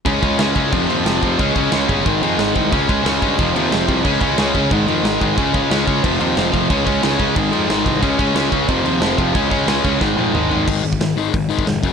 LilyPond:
<<
  \new Staff \with { instrumentName = "Distorted electric guitar" } { \clef bass \time 4/4 \key aes \major \tempo 4 = 181 <des aes des'>8 <des aes des'>8 <des aes des'>8 <des aes des'>8 <f, c f>8 <f, c f>8 <f, c f>8 <f, c f>8 | <des aes des'>8 <des aes des'>8 <des aes des'>8 <des aes des'>8 <aes, ees aes>8 <aes, ees aes>8 <aes, ees aes>8 <aes, ees aes>8 | <des aes des'>8 <des aes des'>8 <des aes des'>8 <des aes des'>8 <f, c f>8 <f, c f>8 <f, c f>8 <f, c f>8 | <des aes des'>8 <des aes des'>8 <des aes des'>8 <des aes des'>8 <aes, ees aes>8 <aes, ees aes>8 <aes, ees aes>8 <aes, ees aes>8 |
<des aes des'>8 <des aes des'>8 <des aes des'>8 <des aes des'>8 <f, c f>8 <f, c f>8 <f, c f>8 <f, c f>8 | <des aes des'>8 <des aes des'>8 <des aes des'>8 <des aes des'>8 <aes, ees aes>8 <aes, ees aes>8 <aes, ees aes>8 <aes, ees aes>8 | <des aes des'>8 <des aes des'>8 <des aes des'>8 <des aes des'>8 <f, c f>8 <f, c f>8 <f, c f>8 <f, c f>8 | <des aes des'>8 <des aes des'>8 <des aes des'>8 <des aes des'>8 <aes, ees aes>8 <aes, ees aes>8 <aes, ees aes>8 <aes, ees aes>8 |
r1 | }
  \new Staff \with { instrumentName = "Overdriven electric guitar" } { \clef bass \time 4/4 \key aes \major <des aes des'>8 <des aes des'>8 <des aes des'>8 <des aes des'>8 <f, c f>8 <f, c f>8 <f, c f>8 <f, c f>8 | <des aes des'>8 <des aes des'>8 <des aes des'>8 <des aes des'>8 <aes, ees aes>8 <aes, ees aes>8 <aes, ees aes>8 <aes, ees aes>8 | <des aes des'>8 <des aes des'>8 <des aes des'>8 <des aes des'>8 <f, c f>8 <f, c f>8 <f, c f>8 <f, c f>8 | <des aes des'>8 <des aes des'>8 <des aes des'>8 <des aes des'>8 <aes, ees aes>8 <aes, ees aes>8 <aes, ees aes>8 <aes, ees aes>8 |
<des aes des'>8 <des aes des'>8 <des aes des'>8 <des aes des'>8 <f, c f>8 <f, c f>8 <f, c f>8 <f, c f>8 | <des aes des'>8 <des aes des'>8 <des aes des'>8 <des aes des'>8 <aes, ees aes>8 <aes, ees aes>8 <aes, ees aes>8 <aes, ees aes>8 | <des aes des'>8 <des aes des'>8 <des aes des'>8 <des aes des'>8 <f, c f>8 <f, c f>8 <f, c f>8 <f, c f>8 | <des aes des'>8 <des aes des'>8 <des aes des'>8 <des aes des'>8 <aes, ees aes>8 <aes, ees aes>8 <aes, ees aes>8 <aes, ees aes>8 |
<aes, ees aes>8 <aes, ees>8 <aes, ees>8 <aes, ees aes>8 <aes, ees>8 <aes, ees aes>8 <aes, ees>8 <ges, des ges>8 | }
  \new Staff \with { instrumentName = "Picked electric bass" } { \clef bass \time 4/4 \key aes \major des,8 des,8 des,8 des,8 f,,8 ees,8 f,,8 f,,8 | des,8 des,8 des,8 g,,8 aes,,8 f,8 aes,,8 c,8 | des,8 des,8 des,8 g,8 f,,8 ees,8 f,,8 c,8 | des,8 des,8 des,8 des,8 aes,,8 f,8 aes,,8 aes,,8 |
des,8 des,8 des,8 des,8 f,,8 ees,8 f,,8 f,,8 | des,8 des,8 des,8 des,8 aes,,8 f,8 aes,,8 c,8 | des,8 des,8 des,8 des,8 f,,8 ees,8 f,,8 f,,8 | des,8 des,8 des,8 des,8 aes,,8 f,8 aes,,8 aes,,8 |
aes,,8 aes,,8 aes,,8 aes,,8 aes,,8 aes,,8 f,,8 ges,,8 | }
  \new DrumStaff \with { instrumentName = "Drums" } \drummode { \time 4/4 <cymc bd>8 <cymc bd>8 <cymc sn>8 <cymc bd>8 <cymc bd>8 cymc8 <cymc sn>8 <cymc bd>8 | <cymc bd>8 <cymc bd>8 <cymc sn>8 <cymc bd>8 <cymc bd>8 cymc8 <cymc sn>8 <cymc bd>8 | <cymc bd>8 <cymc bd>8 <cymc sn>8 <cymc bd>8 <cymc bd>8 cymc8 <cymc sn>8 <cymc bd>8 | <cymc bd>8 <cymc bd>8 <cymc sn>8 <cymc bd>8 <cymc bd>8 cymc8 <cymc sn>8 <cymc bd>8 |
<cymc bd>8 <cymc bd>8 <cymc sn>8 <cymc bd>8 <cymc bd>8 cymc8 <cymc sn>8 <cymc bd>8 | <cymc bd>8 <cymc bd>8 <cymc sn>8 <cymc bd>8 <cymc bd>8 cymc8 <cymc sn>8 <cymc bd>8 | <cymc bd>8 <cymc bd>8 <cymc sn>8 <cymc bd>8 <cymc bd>8 cymc8 <cymc sn>8 <cymc bd>8 | <cymc bd>8 <cymc bd>8 <cymc sn>8 <cymc bd>8 <bd sn>8 tommh8 toml8 tomfh8 |
<cymc bd>8 hho16 bd16 <hho sn>8 hho8 <hho bd>8 hho16 bd16 <hho sn>8 <hho bd>8 | }
>>